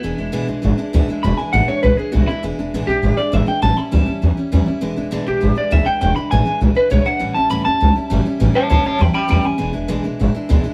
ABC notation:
X:1
M:4/4
L:1/8
Q:1/4=201
K:Emix
V:1 name="Clean electric guitar"
E3 z4 z | b g f c B G F E | z3 =G2 d e =g | a b a2 z4 |
z3 =G2 d e =g | =g b ^g2 z B c f- | f a b a4 z | z [ca] [ca] [ca] [=gb] [gb] [gb] ^g- |
g3 z4 z |]
V:2 name="Steel-string acoustic guitar" clef=bass
[E,,B,,E,G,DE] [E,G,DE] [E,,B,,E,G,DE] [E,G,DE] [E,G,DE] [E,G,DE] [E,,B,,E,G,DE] [E,G,DE] | [E,,B,,E,G,DE] [E,G,DE] [E,,B,,E,G,DE] [E,G,DE] [E,G,DE] [E,G,DE] [E,,B,,E,G,DE] [E,G,DE] | [E,,B,,E,G,DE] [E,G,DE] [E,,B,,E,G,DE] [E,G,DE] [E,G,DE] [E,G,DE] [E,,B,,E,G,DE] [E,G,DE] | [A,,E,=G,CE] [G,CE] [A,,E,G,CE] [G,CE] [E,G,CE] [G,CE] [A,,E,G,CE] [G,CE] |
[E,,B,,E,G,DE] [E,G,DE] [E,,B,,E,G,DE] [E,G,DE] [E,G,DE] [E,G,DE] [E,,B,,E,G,DE] [E,G,DE] | [E,,B,,E,G,DE] [E,G,DE] [E,,B,,E,G,DE] [E,G,DE] [E,G,DE] [E,G,DE] [E,,B,,E,G,DE] [E,G,DE] | [A,,E,=G,CE] [G,CE] [A,,E,G,CE] [G,CE] [E,G,CE] [G,CE] [A,,E,G,CE] [G,CE] | [A,,E,=G,CE] [G,CE] [A,,E,G,CE] [G,CE] [E,G,CE] [G,CE] [A,,E,G,CE] [G,CE] |
[E,,B,,E,G,DE] [E,G,DE] [E,,B,,E,G,DE] [E,G,DE] [E,G,DE] [E,G,DE] [E,,B,,E,G,DE] [E,G,DE] |]
V:3 name="Upright bass" clef=bass
E,,, E,,, A,,, B,,, G,,, z D,, z | E,,, z A,,, z B,,, z B,,, z | E,,, E,,, A,,, B,,, G,,, z G,,, z | A,,, z D,, z E,, z E,, z |
E,,, E,,, A,,, B,,, G,,, z D,, z | E,,, z A,,, z B,,, z B,,, z | A,,, A,,, D,, E,, C,, z =G,,, z | A,,, z D,, z E,, z E,, z |
E,,, E,,, A,,, B,,, G,,, z D,, z |]